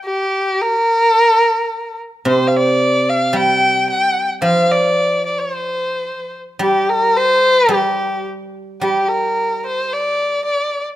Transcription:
<<
  \new Staff \with { instrumentName = "Erhu" } { \time 2/4 \tempo 4 = 110 g'4 bes'4~ | bes'4. r8 | c''16. f''32 d''4 f''8 | g''4 g''8. r16 |
f''8 d''4 d''16 c''16~ | c''4. r8 | g'8 bes'8 c''4 | g'4 r4 |
g'8 bes'4 c''8 | d''4 d''8. r16 | }
  \new Staff \with { instrumentName = "Guzheng" } { \clef bass \time 2/4 r2 | r2 | c2 | g2 |
f2~ | f4 r4 | g2 | g2 |
g2~ | g4 r4 | }
>>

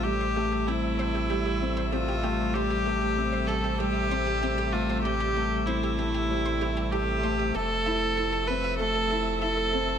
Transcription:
<<
  \new Staff \with { instrumentName = "Synth arpeggio sound" } { \time 4/4 \key a \minor \tempo 4 = 96 r16 c''16 g'16 g'16 g'16 r16 c''16 g'16 g'16 g'16 r16 c''16 g'16 g'16 g'16 r16 | c''16 g'16 g'16 g'16 r16 c''16 g'16 g'16 g'16 r16 c''16 g'16 g'16 g'16 r16 c''16 | g'16 g'16 g'16 r16 c''16 g'16 g'16 g'16 r16 c''16 g'16 g'16 g'16 r16 c''16 g'16 | a'16 r16 e''16 a'16 a'16 a'16 r16 e''16 a'16 a'16 a'16 r16 e''16 a'16 a'16 a'16 | }
  \new Staff \with { instrumentName = "Viola" } { \time 4/4 \key a \minor g'4 e'2 f'4 | g'4. a'8 g'4. f'8 | g'4 e'2 g'4 | a'4. b'8 a'4 a'4 | }
  \new Staff \with { instrumentName = "Felt piano" } { \time 4/4 \key a \minor g8 a8 c'8 a8 g8 c'8 c'8 a8 | g8 a8 c'8 a8 g8 c'8 c'8 a8 | g8 a8 c'8 a8 g8 e'8 a'8 a8 | a8 e'8 e'8 c'8 a8 e'8 e'8 c'8 | }
  \new Staff \with { instrumentName = "String quartet" } { \clef bass \time 4/4 \key a \minor << { <g e''>1~ | <g e''>1~ | <g e''>1 | <f e''>1 | } \\ { <c a>1~ | <c a>1~ | <c a>1~ | <c a>1 | } >> }
  \new Staff \with { instrumentName = "Sub bass" } { \clef bass \time 4/4 \key a \minor a,,1~ | a,,1~ | a,,1 | f,,1 | }
>>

